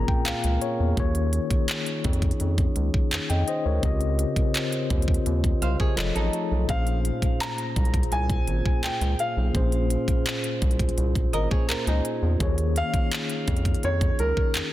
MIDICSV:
0, 0, Header, 1, 7, 480
1, 0, Start_track
1, 0, Tempo, 714286
1, 655, Time_signature, 4, 2, 24, 8
1, 9898, End_track
2, 0, Start_track
2, 0, Title_t, "Grand piano"
2, 0, Program_c, 0, 0
2, 4501, Note_on_c, 0, 77, 88
2, 4979, Note_on_c, 0, 82, 94
2, 4992, Note_off_c, 0, 77, 0
2, 5460, Note_on_c, 0, 80, 97
2, 5471, Note_off_c, 0, 82, 0
2, 5940, Note_on_c, 0, 79, 80
2, 5952, Note_off_c, 0, 80, 0
2, 6161, Note_off_c, 0, 79, 0
2, 6182, Note_on_c, 0, 77, 80
2, 7111, Note_off_c, 0, 77, 0
2, 8584, Note_on_c, 0, 77, 108
2, 9304, Note_on_c, 0, 73, 91
2, 9321, Note_off_c, 0, 77, 0
2, 9523, Note_off_c, 0, 73, 0
2, 9540, Note_on_c, 0, 70, 94
2, 9898, Note_off_c, 0, 70, 0
2, 9898, End_track
3, 0, Start_track
3, 0, Title_t, "Nylon-string guitar"
3, 0, Program_c, 1, 24
3, 3776, Note_on_c, 1, 77, 74
3, 3780, Note_on_c, 1, 72, 60
3, 3890, Note_off_c, 1, 77, 0
3, 3892, Note_off_c, 1, 72, 0
3, 3894, Note_on_c, 1, 73, 75
3, 3898, Note_on_c, 1, 68, 66
3, 4008, Note_off_c, 1, 73, 0
3, 4010, Note_off_c, 1, 68, 0
3, 4015, Note_on_c, 1, 71, 75
3, 4018, Note_on_c, 1, 65, 65
3, 4129, Note_off_c, 1, 71, 0
3, 4131, Note_off_c, 1, 65, 0
3, 4134, Note_on_c, 1, 69, 75
3, 4138, Note_on_c, 1, 63, 63
3, 4476, Note_off_c, 1, 69, 0
3, 4479, Note_off_c, 1, 63, 0
3, 7615, Note_on_c, 1, 75, 73
3, 7619, Note_on_c, 1, 70, 65
3, 7729, Note_off_c, 1, 75, 0
3, 7731, Note_off_c, 1, 70, 0
3, 7733, Note_on_c, 1, 73, 78
3, 7738, Note_on_c, 1, 68, 64
3, 7848, Note_off_c, 1, 73, 0
3, 7851, Note_off_c, 1, 68, 0
3, 7855, Note_on_c, 1, 70, 78
3, 7859, Note_on_c, 1, 65, 68
3, 7969, Note_off_c, 1, 70, 0
3, 7971, Note_off_c, 1, 65, 0
3, 7978, Note_on_c, 1, 68, 77
3, 7981, Note_on_c, 1, 63, 67
3, 8318, Note_off_c, 1, 68, 0
3, 8320, Note_off_c, 1, 63, 0
3, 9898, End_track
4, 0, Start_track
4, 0, Title_t, "Tine electric piano"
4, 0, Program_c, 2, 4
4, 0, Control_c, 2, 64, 127
4, 0, Note_on_c, 2, 46, 60
4, 0, Note_on_c, 2, 58, 58
4, 0, Note_on_c, 2, 60, 45
4, 0, Note_on_c, 2, 61, 59
4, 0, Note_on_c, 2, 68, 56
4, 0, Note_on_c, 2, 70, 69
4, 0, Note_on_c, 2, 82, 65
4, 54, Note_on_c, 2, 79, 65
4, 166, Note_off_c, 2, 79, 0
4, 171, Note_on_c, 2, 77, 67
4, 396, Note_off_c, 2, 77, 0
4, 414, Note_on_c, 2, 73, 72
4, 622, Note_off_c, 2, 46, 0
4, 627, Note_off_c, 2, 58, 0
4, 632, Note_off_c, 2, 68, 0
4, 635, Note_off_c, 2, 70, 0
4, 638, Note_off_c, 2, 73, 0
4, 645, Note_on_c, 2, 51, 80
4, 651, Note_off_c, 2, 61, 0
4, 651, Note_on_c, 2, 58, 70
4, 658, Note_on_c, 2, 65, 69
4, 663, Control_c, 2, 64, 0
4, 665, Note_off_c, 2, 82, 0
4, 665, Note_on_c, 2, 68, 67
4, 668, Note_off_c, 2, 60, 0
4, 670, Note_on_c, 2, 73, 86
4, 766, Control_c, 2, 64, 127
4, 1839, Note_off_c, 2, 73, 0
4, 2215, Note_on_c, 2, 79, 66
4, 2220, Note_on_c, 2, 75, 57
4, 2329, Note_off_c, 2, 79, 0
4, 2330, Note_off_c, 2, 75, 0
4, 2338, Note_on_c, 2, 75, 70
4, 2342, Note_on_c, 2, 72, 61
4, 2450, Note_off_c, 2, 75, 0
4, 2453, Note_off_c, 2, 72, 0
4, 2456, Note_on_c, 2, 73, 69
4, 2461, Note_on_c, 2, 70, 53
4, 2543, Note_off_c, 2, 51, 0
4, 2546, Note_off_c, 2, 58, 0
4, 2550, Note_off_c, 2, 65, 0
4, 2553, Note_off_c, 2, 68, 0
4, 2564, Note_on_c, 2, 49, 78
4, 2572, Note_on_c, 2, 60, 69
4, 2577, Note_on_c, 2, 65, 70
4, 2584, Control_c, 2, 64, 0
4, 2584, Note_on_c, 2, 67, 69
4, 2589, Note_on_c, 2, 75, 81
4, 2684, Note_off_c, 2, 73, 0
4, 2686, Note_off_c, 2, 70, 0
4, 2698, Control_c, 2, 64, 127
4, 3982, Note_off_c, 2, 49, 0
4, 3986, Note_off_c, 2, 60, 0
4, 3989, Note_off_c, 2, 65, 0
4, 3993, Note_off_c, 2, 67, 0
4, 3995, Note_off_c, 2, 75, 0
4, 4007, Note_on_c, 2, 53, 72
4, 4010, Note_on_c, 2, 65, 65
4, 4012, Note_on_c, 2, 68, 65
4, 4015, Note_on_c, 2, 69, 66
4, 4017, Note_on_c, 2, 73, 64
4, 4020, Note_on_c, 2, 75, 76
4, 4024, Control_c, 2, 64, 0
4, 4153, Control_c, 2, 64, 127
4, 4480, Note_on_c, 2, 46, 64
4, 4487, Note_on_c, 2, 58, 59
4, 4491, Note_off_c, 2, 53, 0
4, 4493, Note_off_c, 2, 65, 0
4, 4493, Note_off_c, 2, 68, 0
4, 4493, Note_on_c, 2, 61, 56
4, 4495, Note_off_c, 2, 69, 0
4, 4496, Note_off_c, 2, 73, 0
4, 4497, Note_off_c, 2, 75, 0
4, 4500, Note_on_c, 2, 68, 61
4, 4503, Control_c, 2, 64, 0
4, 4506, Note_on_c, 2, 72, 69
4, 4604, Control_c, 2, 64, 127
4, 6380, Note_off_c, 2, 46, 0
4, 6384, Note_off_c, 2, 58, 0
4, 6387, Note_off_c, 2, 61, 0
4, 6391, Note_off_c, 2, 68, 0
4, 6394, Note_off_c, 2, 72, 0
4, 6402, Note_on_c, 2, 46, 62
4, 6409, Note_on_c, 2, 58, 59
4, 6416, Note_on_c, 2, 61, 58
4, 6422, Note_on_c, 2, 68, 60
4, 6427, Note_on_c, 2, 72, 73
4, 8302, Note_off_c, 2, 46, 0
4, 8305, Note_off_c, 2, 58, 0
4, 8309, Note_off_c, 2, 61, 0
4, 8311, Note_off_c, 2, 68, 0
4, 8314, Note_off_c, 2, 72, 0
4, 8324, Note_on_c, 2, 51, 78
4, 8331, Note_on_c, 2, 58, 69
4, 8338, Note_on_c, 2, 65, 69
4, 8344, Control_c, 2, 64, 0
4, 8344, Note_on_c, 2, 68, 68
4, 8350, Note_on_c, 2, 73, 83
4, 8464, Control_c, 2, 64, 127
4, 9898, Note_off_c, 2, 51, 0
4, 9898, Note_off_c, 2, 58, 0
4, 9898, Note_off_c, 2, 65, 0
4, 9898, Note_off_c, 2, 68, 0
4, 9898, Note_off_c, 2, 73, 0
4, 9898, End_track
5, 0, Start_track
5, 0, Title_t, "Glass harmonica"
5, 0, Program_c, 3, 92
5, 0, Note_on_c, 3, 58, 64
5, 0, Note_on_c, 3, 61, 68
5, 0, Note_on_c, 3, 65, 60
5, 0, Note_on_c, 3, 68, 58
5, 0, Note_on_c, 3, 70, 59
5, 628, Note_off_c, 3, 58, 0
5, 628, Note_off_c, 3, 65, 0
5, 628, Note_off_c, 3, 70, 0
5, 651, Note_on_c, 3, 63, 65
5, 2547, Note_off_c, 3, 68, 0
5, 2549, Note_off_c, 3, 61, 0
5, 2554, Note_off_c, 3, 63, 0
5, 2572, Note_on_c, 3, 60, 65
5, 2572, Note_on_c, 3, 65, 61
5, 2574, Note_on_c, 3, 72, 71
5, 3999, Note_off_c, 3, 60, 0
5, 3999, Note_off_c, 3, 65, 0
5, 4000, Note_off_c, 3, 72, 0
5, 4015, Note_on_c, 3, 57, 76
5, 4017, Note_on_c, 3, 63, 69
5, 4018, Note_on_c, 3, 65, 62
5, 4490, Note_off_c, 3, 57, 0
5, 4491, Note_off_c, 3, 63, 0
5, 4497, Note_on_c, 3, 72, 57
5, 4498, Note_on_c, 3, 61, 71
5, 4499, Note_on_c, 3, 58, 67
5, 4499, Note_on_c, 3, 68, 56
5, 8309, Note_off_c, 3, 65, 0
5, 8309, Note_off_c, 3, 72, 0
5, 8310, Note_off_c, 3, 58, 0
5, 8334, Note_on_c, 3, 63, 67
5, 9898, Note_off_c, 3, 61, 0
5, 9898, Note_off_c, 3, 63, 0
5, 9898, Note_off_c, 3, 68, 0
5, 9898, End_track
6, 0, Start_track
6, 0, Title_t, "Analog synth bass"
6, 0, Program_c, 4, 38
6, 178, Note_on_c, 4, 37, 48
6, 226, Note_off_c, 4, 37, 0
6, 297, Note_on_c, 4, 37, 84
6, 390, Note_off_c, 4, 37, 0
6, 537, Note_on_c, 4, 40, 78
6, 630, Note_off_c, 4, 40, 0
6, 653, Note_on_c, 4, 39, 98
6, 936, Note_off_c, 4, 39, 0
6, 1376, Note_on_c, 4, 41, 99
6, 1563, Note_off_c, 4, 41, 0
6, 1616, Note_on_c, 4, 41, 89
6, 1804, Note_off_c, 4, 41, 0
6, 1856, Note_on_c, 4, 37, 85
6, 1949, Note_off_c, 4, 37, 0
6, 2097, Note_on_c, 4, 41, 48
6, 2145, Note_off_c, 4, 41, 0
6, 2216, Note_on_c, 4, 41, 83
6, 2310, Note_off_c, 4, 41, 0
6, 2456, Note_on_c, 4, 38, 84
6, 2549, Note_off_c, 4, 38, 0
6, 2574, Note_on_c, 4, 37, 101
6, 2856, Note_off_c, 4, 37, 0
6, 3296, Note_on_c, 4, 39, 92
6, 3483, Note_off_c, 4, 39, 0
6, 3536, Note_on_c, 4, 39, 99
6, 3723, Note_off_c, 4, 39, 0
6, 3776, Note_on_c, 4, 36, 86
6, 3869, Note_off_c, 4, 36, 0
6, 4015, Note_on_c, 4, 29, 97
6, 4109, Note_off_c, 4, 29, 0
6, 4138, Note_on_c, 4, 33, 93
6, 4230, Note_off_c, 4, 33, 0
6, 4376, Note_on_c, 4, 35, 94
6, 4470, Note_off_c, 4, 35, 0
6, 4495, Note_on_c, 4, 34, 101
6, 4777, Note_off_c, 4, 34, 0
6, 5217, Note_on_c, 4, 36, 94
6, 5404, Note_off_c, 4, 36, 0
6, 5454, Note_on_c, 4, 36, 102
6, 5642, Note_off_c, 4, 36, 0
6, 5696, Note_on_c, 4, 32, 89
6, 5790, Note_off_c, 4, 32, 0
6, 5935, Note_on_c, 4, 37, 47
6, 5983, Note_off_c, 4, 37, 0
6, 6054, Note_on_c, 4, 37, 95
6, 6148, Note_off_c, 4, 37, 0
6, 6294, Note_on_c, 4, 35, 84
6, 6389, Note_off_c, 4, 35, 0
6, 6416, Note_on_c, 4, 34, 100
6, 6697, Note_off_c, 4, 34, 0
6, 7136, Note_on_c, 4, 36, 102
6, 7324, Note_off_c, 4, 36, 0
6, 7375, Note_on_c, 4, 36, 101
6, 7563, Note_off_c, 4, 36, 0
6, 7617, Note_on_c, 4, 32, 86
6, 7710, Note_off_c, 4, 32, 0
6, 7856, Note_on_c, 4, 37, 47
6, 7903, Note_off_c, 4, 37, 0
6, 7976, Note_on_c, 4, 37, 92
6, 8069, Note_off_c, 4, 37, 0
6, 8214, Note_on_c, 4, 40, 83
6, 8308, Note_off_c, 4, 40, 0
6, 8335, Note_on_c, 4, 39, 98
6, 8617, Note_off_c, 4, 39, 0
6, 9057, Note_on_c, 4, 41, 95
6, 9244, Note_off_c, 4, 41, 0
6, 9298, Note_on_c, 4, 41, 93
6, 9485, Note_off_c, 4, 41, 0
6, 9536, Note_on_c, 4, 37, 90
6, 9629, Note_off_c, 4, 37, 0
6, 9776, Note_on_c, 4, 41, 46
6, 9824, Note_off_c, 4, 41, 0
6, 9898, End_track
7, 0, Start_track
7, 0, Title_t, "Drums"
7, 55, Note_on_c, 9, 36, 77
7, 122, Note_off_c, 9, 36, 0
7, 170, Note_on_c, 9, 42, 60
7, 177, Note_on_c, 9, 39, 107
7, 237, Note_off_c, 9, 42, 0
7, 245, Note_off_c, 9, 39, 0
7, 294, Note_on_c, 9, 42, 51
7, 361, Note_off_c, 9, 42, 0
7, 413, Note_on_c, 9, 42, 47
7, 480, Note_off_c, 9, 42, 0
7, 653, Note_on_c, 9, 36, 94
7, 653, Note_on_c, 9, 42, 56
7, 721, Note_off_c, 9, 36, 0
7, 721, Note_off_c, 9, 42, 0
7, 771, Note_on_c, 9, 42, 53
7, 839, Note_off_c, 9, 42, 0
7, 892, Note_on_c, 9, 42, 69
7, 960, Note_off_c, 9, 42, 0
7, 1011, Note_on_c, 9, 36, 80
7, 1012, Note_on_c, 9, 42, 51
7, 1079, Note_off_c, 9, 36, 0
7, 1079, Note_off_c, 9, 42, 0
7, 1133, Note_on_c, 9, 42, 74
7, 1138, Note_on_c, 9, 39, 115
7, 1200, Note_off_c, 9, 42, 0
7, 1205, Note_off_c, 9, 39, 0
7, 1253, Note_on_c, 9, 42, 50
7, 1320, Note_off_c, 9, 42, 0
7, 1373, Note_on_c, 9, 42, 52
7, 1375, Note_on_c, 9, 36, 88
7, 1433, Note_off_c, 9, 42, 0
7, 1433, Note_on_c, 9, 42, 50
7, 1443, Note_off_c, 9, 36, 0
7, 1492, Note_on_c, 9, 36, 88
7, 1493, Note_off_c, 9, 42, 0
7, 1493, Note_on_c, 9, 42, 57
7, 1552, Note_off_c, 9, 42, 0
7, 1552, Note_on_c, 9, 42, 56
7, 1559, Note_off_c, 9, 36, 0
7, 1612, Note_off_c, 9, 42, 0
7, 1612, Note_on_c, 9, 42, 66
7, 1679, Note_off_c, 9, 42, 0
7, 1734, Note_on_c, 9, 36, 91
7, 1734, Note_on_c, 9, 42, 43
7, 1801, Note_off_c, 9, 36, 0
7, 1801, Note_off_c, 9, 42, 0
7, 1853, Note_on_c, 9, 42, 68
7, 1920, Note_off_c, 9, 42, 0
7, 1976, Note_on_c, 9, 36, 79
7, 2043, Note_off_c, 9, 36, 0
7, 2093, Note_on_c, 9, 42, 59
7, 2101, Note_on_c, 9, 39, 102
7, 2160, Note_off_c, 9, 42, 0
7, 2168, Note_off_c, 9, 39, 0
7, 2216, Note_on_c, 9, 42, 47
7, 2283, Note_off_c, 9, 42, 0
7, 2336, Note_on_c, 9, 42, 49
7, 2403, Note_off_c, 9, 42, 0
7, 2574, Note_on_c, 9, 36, 100
7, 2574, Note_on_c, 9, 42, 52
7, 2641, Note_off_c, 9, 36, 0
7, 2641, Note_off_c, 9, 42, 0
7, 2692, Note_on_c, 9, 42, 55
7, 2759, Note_off_c, 9, 42, 0
7, 2815, Note_on_c, 9, 42, 73
7, 2882, Note_off_c, 9, 42, 0
7, 2932, Note_on_c, 9, 36, 86
7, 2934, Note_on_c, 9, 42, 52
7, 2999, Note_off_c, 9, 36, 0
7, 3001, Note_off_c, 9, 42, 0
7, 3057, Note_on_c, 9, 42, 76
7, 3062, Note_on_c, 9, 39, 116
7, 3124, Note_off_c, 9, 42, 0
7, 3129, Note_off_c, 9, 39, 0
7, 3175, Note_on_c, 9, 42, 50
7, 3242, Note_off_c, 9, 42, 0
7, 3295, Note_on_c, 9, 42, 39
7, 3296, Note_on_c, 9, 36, 83
7, 3362, Note_off_c, 9, 42, 0
7, 3363, Note_off_c, 9, 36, 0
7, 3376, Note_on_c, 9, 42, 50
7, 3413, Note_on_c, 9, 36, 88
7, 3443, Note_off_c, 9, 42, 0
7, 3456, Note_on_c, 9, 42, 71
7, 3480, Note_off_c, 9, 36, 0
7, 3523, Note_off_c, 9, 42, 0
7, 3535, Note_on_c, 9, 42, 67
7, 3602, Note_off_c, 9, 42, 0
7, 3655, Note_on_c, 9, 36, 89
7, 3658, Note_on_c, 9, 42, 43
7, 3722, Note_off_c, 9, 36, 0
7, 3725, Note_off_c, 9, 42, 0
7, 3777, Note_on_c, 9, 42, 69
7, 3844, Note_off_c, 9, 42, 0
7, 3896, Note_on_c, 9, 36, 72
7, 3964, Note_off_c, 9, 36, 0
7, 4015, Note_on_c, 9, 42, 60
7, 4022, Note_on_c, 9, 39, 105
7, 4082, Note_off_c, 9, 42, 0
7, 4089, Note_off_c, 9, 39, 0
7, 4137, Note_on_c, 9, 42, 48
7, 4204, Note_off_c, 9, 42, 0
7, 4256, Note_on_c, 9, 42, 45
7, 4323, Note_off_c, 9, 42, 0
7, 4495, Note_on_c, 9, 36, 99
7, 4496, Note_on_c, 9, 42, 54
7, 4562, Note_off_c, 9, 36, 0
7, 4563, Note_off_c, 9, 42, 0
7, 4614, Note_on_c, 9, 42, 56
7, 4681, Note_off_c, 9, 42, 0
7, 4737, Note_on_c, 9, 42, 71
7, 4804, Note_off_c, 9, 42, 0
7, 4854, Note_on_c, 9, 36, 82
7, 4857, Note_on_c, 9, 42, 48
7, 4921, Note_off_c, 9, 36, 0
7, 4925, Note_off_c, 9, 42, 0
7, 4980, Note_on_c, 9, 42, 75
7, 4985, Note_on_c, 9, 39, 112
7, 5047, Note_off_c, 9, 42, 0
7, 5052, Note_off_c, 9, 39, 0
7, 5096, Note_on_c, 9, 42, 49
7, 5163, Note_off_c, 9, 42, 0
7, 5217, Note_on_c, 9, 36, 86
7, 5217, Note_on_c, 9, 42, 53
7, 5276, Note_off_c, 9, 42, 0
7, 5276, Note_on_c, 9, 42, 51
7, 5284, Note_off_c, 9, 36, 0
7, 5334, Note_on_c, 9, 36, 91
7, 5335, Note_off_c, 9, 42, 0
7, 5335, Note_on_c, 9, 42, 56
7, 5397, Note_off_c, 9, 42, 0
7, 5397, Note_on_c, 9, 42, 55
7, 5401, Note_off_c, 9, 36, 0
7, 5455, Note_off_c, 9, 42, 0
7, 5455, Note_on_c, 9, 42, 68
7, 5522, Note_off_c, 9, 42, 0
7, 5575, Note_on_c, 9, 36, 93
7, 5576, Note_on_c, 9, 42, 45
7, 5642, Note_off_c, 9, 36, 0
7, 5643, Note_off_c, 9, 42, 0
7, 5695, Note_on_c, 9, 42, 67
7, 5762, Note_off_c, 9, 42, 0
7, 5816, Note_on_c, 9, 36, 78
7, 5884, Note_off_c, 9, 36, 0
7, 5934, Note_on_c, 9, 42, 60
7, 5942, Note_on_c, 9, 39, 104
7, 6002, Note_off_c, 9, 42, 0
7, 6009, Note_off_c, 9, 39, 0
7, 6058, Note_on_c, 9, 42, 49
7, 6125, Note_off_c, 9, 42, 0
7, 6177, Note_on_c, 9, 42, 50
7, 6244, Note_off_c, 9, 42, 0
7, 6415, Note_on_c, 9, 36, 103
7, 6417, Note_on_c, 9, 42, 54
7, 6483, Note_off_c, 9, 36, 0
7, 6484, Note_off_c, 9, 42, 0
7, 6534, Note_on_c, 9, 42, 56
7, 6601, Note_off_c, 9, 42, 0
7, 6655, Note_on_c, 9, 42, 67
7, 6723, Note_off_c, 9, 42, 0
7, 6773, Note_on_c, 9, 36, 82
7, 6776, Note_on_c, 9, 42, 49
7, 6840, Note_off_c, 9, 36, 0
7, 6843, Note_off_c, 9, 42, 0
7, 6897, Note_on_c, 9, 42, 72
7, 6902, Note_on_c, 9, 39, 122
7, 6964, Note_off_c, 9, 42, 0
7, 6969, Note_off_c, 9, 39, 0
7, 7015, Note_on_c, 9, 42, 52
7, 7082, Note_off_c, 9, 42, 0
7, 7135, Note_on_c, 9, 42, 54
7, 7136, Note_on_c, 9, 36, 86
7, 7196, Note_off_c, 9, 42, 0
7, 7196, Note_on_c, 9, 42, 56
7, 7204, Note_off_c, 9, 36, 0
7, 7254, Note_on_c, 9, 36, 91
7, 7256, Note_off_c, 9, 42, 0
7, 7256, Note_on_c, 9, 42, 56
7, 7316, Note_off_c, 9, 42, 0
7, 7316, Note_on_c, 9, 42, 57
7, 7321, Note_off_c, 9, 36, 0
7, 7376, Note_off_c, 9, 42, 0
7, 7376, Note_on_c, 9, 42, 68
7, 7443, Note_off_c, 9, 42, 0
7, 7496, Note_on_c, 9, 36, 90
7, 7498, Note_on_c, 9, 42, 44
7, 7563, Note_off_c, 9, 36, 0
7, 7565, Note_off_c, 9, 42, 0
7, 7617, Note_on_c, 9, 42, 67
7, 7684, Note_off_c, 9, 42, 0
7, 7737, Note_on_c, 9, 36, 81
7, 7804, Note_off_c, 9, 36, 0
7, 7855, Note_on_c, 9, 42, 63
7, 7863, Note_on_c, 9, 39, 109
7, 7923, Note_off_c, 9, 42, 0
7, 7930, Note_off_c, 9, 39, 0
7, 7979, Note_on_c, 9, 42, 50
7, 8046, Note_off_c, 9, 42, 0
7, 8097, Note_on_c, 9, 42, 48
7, 8164, Note_off_c, 9, 42, 0
7, 8335, Note_on_c, 9, 36, 95
7, 8335, Note_on_c, 9, 42, 54
7, 8402, Note_off_c, 9, 36, 0
7, 8402, Note_off_c, 9, 42, 0
7, 8453, Note_on_c, 9, 42, 52
7, 8520, Note_off_c, 9, 42, 0
7, 8575, Note_on_c, 9, 42, 70
7, 8642, Note_off_c, 9, 42, 0
7, 8693, Note_on_c, 9, 36, 84
7, 8695, Note_on_c, 9, 42, 51
7, 8760, Note_off_c, 9, 36, 0
7, 8762, Note_off_c, 9, 42, 0
7, 8817, Note_on_c, 9, 42, 73
7, 8822, Note_on_c, 9, 39, 118
7, 8885, Note_off_c, 9, 42, 0
7, 8890, Note_off_c, 9, 39, 0
7, 8934, Note_on_c, 9, 42, 49
7, 9001, Note_off_c, 9, 42, 0
7, 9055, Note_on_c, 9, 42, 53
7, 9057, Note_on_c, 9, 36, 88
7, 9116, Note_off_c, 9, 42, 0
7, 9116, Note_on_c, 9, 42, 56
7, 9124, Note_off_c, 9, 36, 0
7, 9174, Note_on_c, 9, 36, 94
7, 9176, Note_off_c, 9, 42, 0
7, 9176, Note_on_c, 9, 42, 55
7, 9236, Note_off_c, 9, 42, 0
7, 9236, Note_on_c, 9, 42, 57
7, 9241, Note_off_c, 9, 36, 0
7, 9295, Note_off_c, 9, 42, 0
7, 9295, Note_on_c, 9, 42, 68
7, 9362, Note_off_c, 9, 42, 0
7, 9416, Note_on_c, 9, 36, 94
7, 9418, Note_on_c, 9, 42, 45
7, 9483, Note_off_c, 9, 36, 0
7, 9485, Note_off_c, 9, 42, 0
7, 9535, Note_on_c, 9, 42, 68
7, 9602, Note_off_c, 9, 42, 0
7, 9657, Note_on_c, 9, 36, 73
7, 9724, Note_off_c, 9, 36, 0
7, 9773, Note_on_c, 9, 42, 61
7, 9780, Note_on_c, 9, 39, 105
7, 9840, Note_off_c, 9, 42, 0
7, 9847, Note_off_c, 9, 39, 0
7, 9898, End_track
0, 0, End_of_file